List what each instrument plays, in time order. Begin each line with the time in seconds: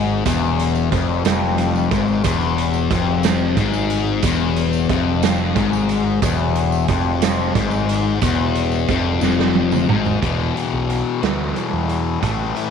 Already playing: picked electric bass G#1, distorted electric guitar G#2
0.25 picked electric bass E1, distorted electric guitar E2, kick, closed hi-hat, tambourine
0.59 closed hi-hat
0.75 tambourine
0.91 picked electric bass F1, distorted electric guitar F2, kick, closed hi-hat
1.25 picked electric bass F1, distorted electric guitar F2, snare, closed hi-hat, tambourine
1.58 closed hi-hat
1.76 tambourine
1.91 picked electric bass G#1, distorted electric guitar G#2, kick, closed hi-hat
2.08 tambourine
2.24 picked electric bass E1, distorted electric guitar E2, kick, closed hi-hat, tambourine
2.41 tambourine
2.58 closed hi-hat
2.73 tambourine
2.91 picked electric bass F1, distorted electric guitar F2, kick, closed hi-hat
3.23 snare, closed hi-hat, tambourine
3.57 picked electric bass G#1, distorted electric guitar G#2, kick, closed hi-hat
3.73 tambourine
3.90 closed hi-hat
4.23 picked electric bass E1, distorted electric guitar E2, kick, closed hi-hat, tambourine
4.40 tambourine
4.56 closed hi-hat
4.73 tambourine
4.89 picked electric bass F1, distorted electric guitar F2, kick, closed hi-hat
5.23 snare, closed hi-hat, tambourine
5.56 picked electric bass G#1, distorted electric guitar G#2, kick, closed hi-hat
5.73 tambourine
5.89 closed hi-hat
6.22 picked electric bass E1, distorted electric guitar E2, kick, closed hi-hat, tambourine
6.39 tambourine
6.56 closed hi-hat
6.72 tambourine
6.88 picked electric bass F1, distorted electric guitar F2, kick, closed hi-hat
7.22 snare, closed hi-hat, tambourine
7.55 picked electric bass G#1, distorted electric guitar G#2, kick, closed hi-hat
7.71 tambourine
7.89 closed hi-hat
8.21 picked electric bass E1, distorted electric guitar E2, kick, closed hi-hat, tambourine
8.55 closed hi-hat
8.72 tambourine
8.88 picked electric bass F1, distorted electric guitar F2, kick, closed hi-hat
9.21 picked electric bass F1, distorted electric guitar F2, snare, tambourine
9.40 snare
9.55 high tom
9.72 mid tom, tambourine
9.88 picked electric bass G#1, distorted electric guitar G#2, mid tom
10.05 floor tom, tambourine
10.21 picked electric bass E1, distorted electric guitar E2 B2 E3, kick, closed hi-hat
10.55 distorted electric guitar B2 E3, closed hi-hat
10.73 picked electric bass B1
10.90 closed hi-hat
11.21 picked electric bass D2, distorted electric guitar E2 B2 E3, snare, closed hi-hat
11.55 distorted electric guitar E2 B2 E3, closed hi-hat
11.73 picked electric bass E2
11.88 distorted electric guitar B2 E3, closed hi-hat
12.21 picked electric bass A1, distorted electric guitar A2 E3 A3, kick, closed hi-hat
12.54 distorted electric guitar E3 A3, closed hi-hat